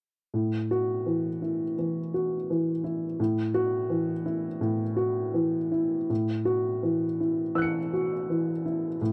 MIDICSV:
0, 0, Header, 1, 2, 480
1, 0, Start_track
1, 0, Tempo, 714286
1, 224, Time_signature, 4, 2, 24, 8
1, 3099, Tempo, 741656
1, 4539, Tempo, 722022
1, 6060, End_track
2, 0, Start_track
2, 0, Title_t, "Upright piano"
2, 0, Program_c, 0, 0
2, 226, Note_on_c, 0, 45, 42
2, 338, Control_c, 0, 64, 127
2, 477, Note_on_c, 0, 66, 48
2, 713, Note_on_c, 0, 52, 36
2, 860, Note_off_c, 0, 66, 0
2, 954, Note_on_c, 0, 64, 32
2, 1098, Note_off_c, 0, 52, 0
2, 1167, Note_off_c, 0, 45, 0
2, 1198, Note_on_c, 0, 52, 34
2, 1339, Note_off_c, 0, 64, 0
2, 1439, Note_on_c, 0, 66, 37
2, 1579, Note_off_c, 0, 52, 0
2, 1682, Note_on_c, 0, 52, 41
2, 1815, Note_off_c, 0, 66, 0
2, 1908, Note_on_c, 0, 64, 39
2, 2052, Note_off_c, 0, 52, 0
2, 2143, Note_off_c, 0, 64, 0
2, 2148, Note_on_c, 0, 45, 51
2, 2153, Control_c, 0, 64, 0
2, 2258, Control_c, 0, 64, 127
2, 2381, Note_on_c, 0, 66, 62
2, 2619, Note_on_c, 0, 52, 44
2, 2762, Note_off_c, 0, 66, 0
2, 2861, Note_on_c, 0, 64, 41
2, 3002, Note_off_c, 0, 52, 0
2, 3074, Note_off_c, 0, 45, 0
2, 3097, Note_on_c, 0, 45, 49
2, 3242, Note_off_c, 0, 64, 0
2, 3327, Note_on_c, 0, 66, 46
2, 3571, Note_on_c, 0, 52, 45
2, 3716, Note_off_c, 0, 66, 0
2, 3814, Note_on_c, 0, 64, 39
2, 3964, Note_off_c, 0, 52, 0
2, 4035, Note_off_c, 0, 45, 0
2, 4059, Note_off_c, 0, 64, 0
2, 4061, Note_on_c, 0, 45, 45
2, 4073, Control_c, 0, 64, 0
2, 4167, Control_c, 0, 64, 127
2, 4291, Note_on_c, 0, 66, 52
2, 4534, Note_on_c, 0, 52, 38
2, 4680, Note_off_c, 0, 66, 0
2, 4783, Note_on_c, 0, 64, 35
2, 4923, Note_off_c, 0, 52, 0
2, 4994, Note_off_c, 0, 45, 0
2, 5013, Note_on_c, 0, 52, 38
2, 5015, Note_on_c, 0, 88, 33
2, 5033, Note_on_c, 0, 90, 33
2, 5059, Note_on_c, 0, 97, 32
2, 5165, Note_off_c, 0, 64, 0
2, 5268, Note_on_c, 0, 66, 38
2, 5399, Note_off_c, 0, 52, 0
2, 5509, Note_on_c, 0, 52, 41
2, 5647, Note_off_c, 0, 66, 0
2, 5749, Note_on_c, 0, 64, 40
2, 5887, Note_off_c, 0, 52, 0
2, 5948, Note_off_c, 0, 88, 0
2, 5957, Note_off_c, 0, 90, 0
2, 5970, Note_off_c, 0, 97, 0
2, 5983, Note_off_c, 0, 64, 0
2, 5986, Note_on_c, 0, 45, 50
2, 5990, Control_c, 0, 64, 0
2, 6060, Note_off_c, 0, 45, 0
2, 6060, End_track
0, 0, End_of_file